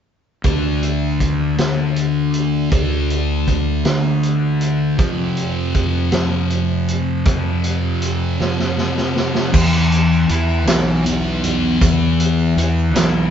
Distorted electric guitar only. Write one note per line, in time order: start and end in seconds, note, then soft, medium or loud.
0.44 2.69 D3 medium
0.44 2.71 A3 medium
0.44 2.73 D4 medium
2.70 4.96 D3 medium
2.70 5.00 A3 medium
2.70 5.02 D4 medium
4.98 7.24 F2 medium
4.98 7.24 C3 medium
4.98 7.25 F3 medium
7.26 9.51 F2 medium
7.26 9.52 C3 medium
7.26 9.52 F3 medium
9.53 10.67 E3 medium
10.30 12.57 E4 medium
10.68 11.43 E3 medium
11.05 13.30 B3 medium
11.44 11.82 E3 medium
11.82 12.95 E3 medium
12.58 13.30 E4 medium
12.95 13.30 E3 medium